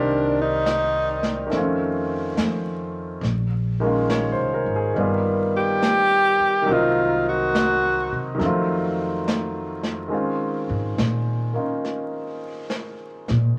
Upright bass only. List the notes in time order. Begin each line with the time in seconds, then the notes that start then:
Already playing: C2
1.52 F2
2.37 F2
3.21 A#1
4.38 C2
4.66 G#1
4.96 G1
6.40 muted upright bass stroke
6.68 C2
8.11 C3
8.39 F2
10.69 G#2
10.98 A#2
13.30 A#2